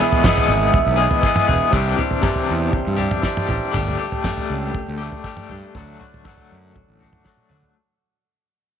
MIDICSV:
0, 0, Header, 1, 5, 480
1, 0, Start_track
1, 0, Tempo, 502513
1, 1657, Time_signature, 4, 2, 24, 8
1, 8400, End_track
2, 0, Start_track
2, 0, Title_t, "Harmonium"
2, 0, Program_c, 0, 20
2, 0, Note_on_c, 0, 64, 75
2, 0, Note_on_c, 0, 68, 68
2, 0, Note_on_c, 0, 71, 60
2, 0, Note_on_c, 0, 76, 79
2, 1637, Note_on_c, 0, 74, 66
2, 1639, Note_on_c, 0, 72, 61
2, 1640, Note_off_c, 0, 71, 0
2, 1640, Note_on_c, 0, 67, 65
2, 1642, Note_off_c, 0, 64, 0
2, 1642, Note_off_c, 0, 68, 0
2, 3541, Note_off_c, 0, 76, 0
2, 3548, Note_off_c, 0, 72, 0
2, 3554, Note_on_c, 0, 69, 69
2, 3555, Note_on_c, 0, 79, 70
2, 5451, Note_off_c, 0, 67, 0
2, 5468, Note_off_c, 0, 79, 0
2, 5487, Note_on_c, 0, 78, 74
2, 5493, Note_on_c, 0, 66, 68
2, 7372, Note_off_c, 0, 69, 0
2, 7373, Note_off_c, 0, 74, 0
2, 7397, Note_off_c, 0, 78, 0
2, 7399, Note_off_c, 0, 66, 0
2, 8400, End_track
3, 0, Start_track
3, 0, Title_t, "Clean electric guitar"
3, 0, Program_c, 1, 27
3, 0, Note_on_c, 1, 40, 87
3, 0, Note_on_c, 1, 47, 94
3, 0, Note_on_c, 1, 56, 54
3, 0, Note_on_c, 1, 59, 70
3, 0, Note_on_c, 1, 68, 71
3, 9, Note_on_c, 1, 52, 47
3, 214, Note_off_c, 1, 40, 0
3, 222, Note_off_c, 1, 47, 0
3, 226, Note_on_c, 1, 40, 80
3, 232, Note_on_c, 1, 47, 85
3, 233, Note_off_c, 1, 56, 0
3, 236, Note_off_c, 1, 52, 0
3, 239, Note_off_c, 1, 59, 0
3, 240, Note_on_c, 1, 52, 87
3, 244, Note_on_c, 1, 56, 88
3, 247, Note_off_c, 1, 68, 0
3, 250, Note_on_c, 1, 59, 96
3, 259, Note_on_c, 1, 68, 96
3, 906, Note_off_c, 1, 68, 0
3, 917, Note_on_c, 1, 68, 64
3, 922, Note_off_c, 1, 59, 0
3, 928, Note_off_c, 1, 56, 0
3, 933, Note_on_c, 1, 59, 60
3, 939, Note_on_c, 1, 56, 52
3, 946, Note_off_c, 1, 52, 0
3, 957, Note_on_c, 1, 52, 54
3, 1150, Note_off_c, 1, 52, 0
3, 1161, Note_on_c, 1, 52, 70
3, 1172, Note_off_c, 1, 56, 0
3, 1180, Note_off_c, 1, 40, 0
3, 1181, Note_off_c, 1, 59, 0
3, 1183, Note_on_c, 1, 56, 78
3, 1184, Note_off_c, 1, 47, 0
3, 1193, Note_off_c, 1, 68, 0
3, 1193, Note_on_c, 1, 59, 83
3, 1205, Note_on_c, 1, 68, 80
3, 1396, Note_off_c, 1, 68, 0
3, 1408, Note_on_c, 1, 68, 65
3, 1419, Note_off_c, 1, 59, 0
3, 1428, Note_off_c, 1, 56, 0
3, 1430, Note_on_c, 1, 59, 65
3, 1436, Note_off_c, 1, 52, 0
3, 1440, Note_on_c, 1, 56, 56
3, 1448, Note_on_c, 1, 52, 58
3, 1631, Note_on_c, 1, 48, 85
3, 1636, Note_off_c, 1, 52, 0
3, 1638, Note_off_c, 1, 68, 0
3, 1643, Note_off_c, 1, 56, 0
3, 1647, Note_on_c, 1, 52, 88
3, 1647, Note_on_c, 1, 55, 86
3, 1649, Note_off_c, 1, 59, 0
3, 1661, Note_on_c, 1, 62, 90
3, 1665, Note_on_c, 1, 67, 89
3, 1868, Note_off_c, 1, 67, 0
3, 1872, Note_on_c, 1, 67, 59
3, 1889, Note_off_c, 1, 62, 0
3, 1892, Note_on_c, 1, 62, 54
3, 1901, Note_off_c, 1, 55, 0
3, 1905, Note_on_c, 1, 55, 59
3, 2100, Note_off_c, 1, 48, 0
3, 2109, Note_off_c, 1, 52, 0
3, 2111, Note_on_c, 1, 48, 88
3, 2120, Note_on_c, 1, 52, 87
3, 2122, Note_off_c, 1, 55, 0
3, 2126, Note_on_c, 1, 55, 90
3, 2131, Note_off_c, 1, 62, 0
3, 2135, Note_on_c, 1, 62, 91
3, 2139, Note_off_c, 1, 67, 0
3, 2143, Note_on_c, 1, 67, 84
3, 2821, Note_off_c, 1, 67, 0
3, 2833, Note_on_c, 1, 67, 73
3, 2844, Note_off_c, 1, 62, 0
3, 2848, Note_on_c, 1, 62, 61
3, 2853, Note_off_c, 1, 55, 0
3, 2864, Note_on_c, 1, 55, 51
3, 3064, Note_off_c, 1, 52, 0
3, 3069, Note_off_c, 1, 55, 0
3, 3075, Note_on_c, 1, 52, 66
3, 3081, Note_on_c, 1, 55, 72
3, 3084, Note_off_c, 1, 48, 0
3, 3088, Note_off_c, 1, 67, 0
3, 3092, Note_off_c, 1, 62, 0
3, 3096, Note_on_c, 1, 62, 82
3, 3100, Note_on_c, 1, 67, 69
3, 3301, Note_off_c, 1, 67, 0
3, 3312, Note_on_c, 1, 67, 63
3, 3329, Note_off_c, 1, 62, 0
3, 3333, Note_on_c, 1, 62, 60
3, 3337, Note_off_c, 1, 55, 0
3, 3348, Note_on_c, 1, 55, 51
3, 3537, Note_off_c, 1, 55, 0
3, 3544, Note_off_c, 1, 52, 0
3, 3548, Note_on_c, 1, 55, 90
3, 3550, Note_off_c, 1, 67, 0
3, 3561, Note_on_c, 1, 57, 78
3, 3565, Note_off_c, 1, 62, 0
3, 3569, Note_on_c, 1, 62, 91
3, 3575, Note_on_c, 1, 67, 96
3, 3784, Note_off_c, 1, 67, 0
3, 3795, Note_on_c, 1, 67, 75
3, 3805, Note_off_c, 1, 62, 0
3, 3808, Note_on_c, 1, 62, 62
3, 3821, Note_off_c, 1, 57, 0
3, 3825, Note_on_c, 1, 57, 51
3, 4025, Note_off_c, 1, 55, 0
3, 4037, Note_on_c, 1, 55, 84
3, 4043, Note_off_c, 1, 57, 0
3, 4046, Note_on_c, 1, 57, 94
3, 4050, Note_off_c, 1, 67, 0
3, 4052, Note_off_c, 1, 62, 0
3, 4056, Note_on_c, 1, 62, 95
3, 4061, Note_on_c, 1, 67, 100
3, 4742, Note_off_c, 1, 67, 0
3, 4753, Note_on_c, 1, 67, 67
3, 4772, Note_off_c, 1, 62, 0
3, 4776, Note_on_c, 1, 62, 54
3, 4782, Note_off_c, 1, 57, 0
3, 4792, Note_on_c, 1, 57, 58
3, 4987, Note_off_c, 1, 55, 0
3, 4999, Note_on_c, 1, 55, 74
3, 5006, Note_off_c, 1, 57, 0
3, 5010, Note_on_c, 1, 57, 68
3, 5012, Note_off_c, 1, 62, 0
3, 5013, Note_off_c, 1, 67, 0
3, 5016, Note_on_c, 1, 62, 80
3, 5024, Note_on_c, 1, 67, 80
3, 5235, Note_off_c, 1, 67, 0
3, 5247, Note_on_c, 1, 67, 62
3, 5261, Note_off_c, 1, 62, 0
3, 5265, Note_on_c, 1, 62, 61
3, 5275, Note_off_c, 1, 57, 0
3, 5281, Note_on_c, 1, 57, 54
3, 5474, Note_off_c, 1, 55, 0
3, 5478, Note_off_c, 1, 67, 0
3, 5491, Note_on_c, 1, 50, 77
3, 5502, Note_on_c, 1, 54, 79
3, 5507, Note_off_c, 1, 57, 0
3, 5511, Note_on_c, 1, 57, 76
3, 5514, Note_off_c, 1, 62, 0
3, 5518, Note_on_c, 1, 62, 87
3, 5520, Note_on_c, 1, 66, 83
3, 5714, Note_off_c, 1, 66, 0
3, 5725, Note_on_c, 1, 66, 64
3, 5727, Note_off_c, 1, 62, 0
3, 5739, Note_on_c, 1, 62, 55
3, 5745, Note_off_c, 1, 57, 0
3, 5757, Note_on_c, 1, 57, 50
3, 5952, Note_off_c, 1, 50, 0
3, 5957, Note_off_c, 1, 54, 0
3, 5964, Note_on_c, 1, 50, 82
3, 5969, Note_off_c, 1, 57, 0
3, 5969, Note_on_c, 1, 54, 80
3, 5974, Note_off_c, 1, 62, 0
3, 5978, Note_off_c, 1, 66, 0
3, 5981, Note_on_c, 1, 57, 80
3, 5986, Note_on_c, 1, 62, 83
3, 5989, Note_on_c, 1, 66, 93
3, 6676, Note_off_c, 1, 66, 0
3, 6688, Note_on_c, 1, 66, 56
3, 6695, Note_off_c, 1, 62, 0
3, 6706, Note_off_c, 1, 57, 0
3, 6706, Note_on_c, 1, 62, 48
3, 6718, Note_on_c, 1, 57, 50
3, 6908, Note_off_c, 1, 54, 0
3, 6919, Note_on_c, 1, 54, 72
3, 6920, Note_off_c, 1, 57, 0
3, 6932, Note_on_c, 1, 57, 69
3, 6933, Note_off_c, 1, 50, 0
3, 6933, Note_off_c, 1, 62, 0
3, 6943, Note_off_c, 1, 66, 0
3, 6944, Note_on_c, 1, 62, 68
3, 6955, Note_on_c, 1, 66, 78
3, 7157, Note_off_c, 1, 66, 0
3, 7169, Note_off_c, 1, 62, 0
3, 7169, Note_on_c, 1, 66, 57
3, 7181, Note_on_c, 1, 62, 50
3, 7190, Note_off_c, 1, 57, 0
3, 7202, Note_on_c, 1, 57, 45
3, 7396, Note_off_c, 1, 54, 0
3, 7401, Note_off_c, 1, 66, 0
3, 7407, Note_off_c, 1, 62, 0
3, 7417, Note_off_c, 1, 57, 0
3, 8400, End_track
4, 0, Start_track
4, 0, Title_t, "Fingered electric bass"
4, 0, Program_c, 2, 33
4, 460, Note_on_c, 2, 32, 83
4, 654, Note_off_c, 2, 32, 0
4, 825, Note_on_c, 2, 35, 79
4, 1017, Note_off_c, 2, 35, 0
4, 1420, Note_on_c, 2, 28, 85
4, 1516, Note_off_c, 2, 28, 0
4, 1649, Note_on_c, 2, 36, 105
4, 1847, Note_off_c, 2, 36, 0
4, 2390, Note_on_c, 2, 40, 74
4, 2579, Note_off_c, 2, 40, 0
4, 2743, Note_on_c, 2, 43, 80
4, 2935, Note_off_c, 2, 43, 0
4, 3328, Note_on_c, 2, 33, 91
4, 3429, Note_off_c, 2, 33, 0
4, 3581, Note_on_c, 2, 31, 101
4, 3774, Note_off_c, 2, 31, 0
4, 4298, Note_on_c, 2, 37, 75
4, 4492, Note_off_c, 2, 37, 0
4, 4664, Note_on_c, 2, 38, 77
4, 4856, Note_off_c, 2, 38, 0
4, 5266, Note_on_c, 2, 43, 78
4, 5360, Note_off_c, 2, 43, 0
4, 5493, Note_on_c, 2, 38, 99
4, 5690, Note_off_c, 2, 38, 0
4, 6227, Note_on_c, 2, 42, 79
4, 6419, Note_off_c, 2, 42, 0
4, 6574, Note_on_c, 2, 33, 69
4, 6771, Note_off_c, 2, 33, 0
4, 7179, Note_on_c, 2, 50, 70
4, 7277, Note_off_c, 2, 50, 0
4, 8400, End_track
5, 0, Start_track
5, 0, Title_t, "Drums"
5, 117, Note_on_c, 9, 43, 82
5, 213, Note_off_c, 9, 43, 0
5, 231, Note_on_c, 9, 36, 116
5, 239, Note_on_c, 9, 47, 82
5, 240, Note_on_c, 9, 38, 80
5, 326, Note_off_c, 9, 36, 0
5, 334, Note_off_c, 9, 47, 0
5, 335, Note_off_c, 9, 38, 0
5, 358, Note_on_c, 9, 43, 82
5, 453, Note_off_c, 9, 43, 0
5, 705, Note_on_c, 9, 36, 101
5, 706, Note_on_c, 9, 43, 79
5, 801, Note_off_c, 9, 36, 0
5, 801, Note_off_c, 9, 43, 0
5, 1057, Note_on_c, 9, 43, 82
5, 1153, Note_off_c, 9, 43, 0
5, 1177, Note_on_c, 9, 36, 96
5, 1273, Note_off_c, 9, 36, 0
5, 1296, Note_on_c, 9, 47, 72
5, 1392, Note_off_c, 9, 47, 0
5, 1424, Note_on_c, 9, 43, 78
5, 1519, Note_off_c, 9, 43, 0
5, 1652, Note_on_c, 9, 43, 72
5, 1653, Note_on_c, 9, 36, 89
5, 1747, Note_off_c, 9, 43, 0
5, 1748, Note_off_c, 9, 36, 0
5, 1898, Note_on_c, 9, 43, 76
5, 1993, Note_off_c, 9, 43, 0
5, 2015, Note_on_c, 9, 43, 74
5, 2111, Note_off_c, 9, 43, 0
5, 2130, Note_on_c, 9, 36, 111
5, 2134, Note_on_c, 9, 47, 79
5, 2226, Note_off_c, 9, 36, 0
5, 2230, Note_off_c, 9, 47, 0
5, 2251, Note_on_c, 9, 43, 76
5, 2346, Note_off_c, 9, 43, 0
5, 2609, Note_on_c, 9, 36, 109
5, 2609, Note_on_c, 9, 43, 80
5, 2704, Note_off_c, 9, 36, 0
5, 2704, Note_off_c, 9, 43, 0
5, 2851, Note_on_c, 9, 43, 57
5, 2947, Note_off_c, 9, 43, 0
5, 2973, Note_on_c, 9, 43, 68
5, 2973, Note_on_c, 9, 47, 65
5, 3069, Note_off_c, 9, 43, 0
5, 3069, Note_off_c, 9, 47, 0
5, 3087, Note_on_c, 9, 38, 66
5, 3089, Note_on_c, 9, 36, 85
5, 3183, Note_off_c, 9, 38, 0
5, 3185, Note_off_c, 9, 36, 0
5, 3221, Note_on_c, 9, 47, 75
5, 3316, Note_off_c, 9, 47, 0
5, 3339, Note_on_c, 9, 43, 76
5, 3434, Note_off_c, 9, 43, 0
5, 3575, Note_on_c, 9, 36, 95
5, 3585, Note_on_c, 9, 43, 75
5, 3670, Note_off_c, 9, 36, 0
5, 3681, Note_off_c, 9, 43, 0
5, 3709, Note_on_c, 9, 43, 76
5, 3805, Note_off_c, 9, 43, 0
5, 3937, Note_on_c, 9, 43, 75
5, 4032, Note_off_c, 9, 43, 0
5, 4053, Note_on_c, 9, 36, 99
5, 4058, Note_on_c, 9, 47, 77
5, 4059, Note_on_c, 9, 38, 69
5, 4149, Note_off_c, 9, 36, 0
5, 4154, Note_off_c, 9, 47, 0
5, 4155, Note_off_c, 9, 38, 0
5, 4177, Note_on_c, 9, 43, 74
5, 4273, Note_off_c, 9, 43, 0
5, 4532, Note_on_c, 9, 36, 96
5, 4532, Note_on_c, 9, 43, 79
5, 4628, Note_off_c, 9, 36, 0
5, 4628, Note_off_c, 9, 43, 0
5, 4892, Note_on_c, 9, 43, 77
5, 4988, Note_off_c, 9, 43, 0
5, 5008, Note_on_c, 9, 36, 86
5, 5103, Note_off_c, 9, 36, 0
5, 5127, Note_on_c, 9, 47, 67
5, 5223, Note_off_c, 9, 47, 0
5, 5248, Note_on_c, 9, 43, 74
5, 5344, Note_off_c, 9, 43, 0
5, 5492, Note_on_c, 9, 36, 86
5, 5496, Note_on_c, 9, 43, 72
5, 5587, Note_off_c, 9, 36, 0
5, 5591, Note_off_c, 9, 43, 0
5, 5737, Note_on_c, 9, 43, 72
5, 5833, Note_off_c, 9, 43, 0
5, 5866, Note_on_c, 9, 43, 80
5, 5961, Note_off_c, 9, 43, 0
5, 5968, Note_on_c, 9, 47, 68
5, 5972, Note_on_c, 9, 36, 105
5, 6064, Note_off_c, 9, 47, 0
5, 6068, Note_off_c, 9, 36, 0
5, 6088, Note_on_c, 9, 43, 72
5, 6183, Note_off_c, 9, 43, 0
5, 6454, Note_on_c, 9, 36, 100
5, 6458, Note_on_c, 9, 43, 80
5, 6549, Note_off_c, 9, 36, 0
5, 6553, Note_off_c, 9, 43, 0
5, 6695, Note_on_c, 9, 43, 56
5, 6791, Note_off_c, 9, 43, 0
5, 6809, Note_on_c, 9, 43, 75
5, 6809, Note_on_c, 9, 47, 64
5, 6904, Note_off_c, 9, 43, 0
5, 6904, Note_off_c, 9, 47, 0
5, 6921, Note_on_c, 9, 38, 48
5, 6932, Note_on_c, 9, 36, 86
5, 7017, Note_off_c, 9, 38, 0
5, 7028, Note_off_c, 9, 36, 0
5, 7042, Note_on_c, 9, 48, 53
5, 7137, Note_off_c, 9, 48, 0
5, 7162, Note_on_c, 9, 45, 73
5, 7257, Note_off_c, 9, 45, 0
5, 7285, Note_on_c, 9, 43, 64
5, 7381, Note_off_c, 9, 43, 0
5, 8400, End_track
0, 0, End_of_file